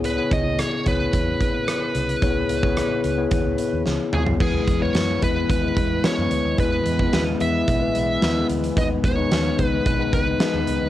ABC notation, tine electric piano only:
X:1
M:4/4
L:1/16
Q:1/4=110
K:Elyd
V:1 name="Tine electric piano"
z [B,EGc]4 z [B,EGc]6 z4 | [B,EGc]2 z [B,EGc]3 z [B,EGc]6 z3 | [G,B,EB]2 z [G,B,EB]2 z [G,B,EB]2 z [G,B,EB]2 z [G,B,EB]3 z | [G,B,EB]2 z [G,B,EB]2 z [G,B,EB]2 z [G,B,EB]2 z [G,B,EB]3 z |
[G,B,DB]2 z [G,B,DB]2 z [G,B,DB]2 z [G,B,DB]2 z [G,B,DB]3 z |]
V:2 name="Tine electric piano" clef=bass
C,4 z8 z2 C,2- | C,4 z12 | E,6 z8 z2 | E,6 z8 z2 |
D,6 z8 z2 |]